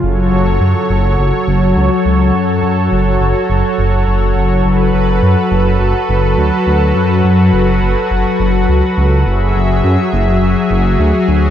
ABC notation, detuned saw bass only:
X:1
M:4/4
L:1/8
Q:1/4=104
K:F#m
V:1 name="Detuned saw bass" clef=bass
F,,, F,,, F,, F,,, F,,, F,,, C,, C,, | F,, F,, F,,, F,,, F,,, F,,, F,,, F,,, | F,,, F,,, F,, F,,, F,,, F,,, D,, D,, | F,, F,, F,,, F,,, F,,, F,,, C,, C,, |
F,,, F,,, F,, F,,, F,,, F,,, D,, D,, |]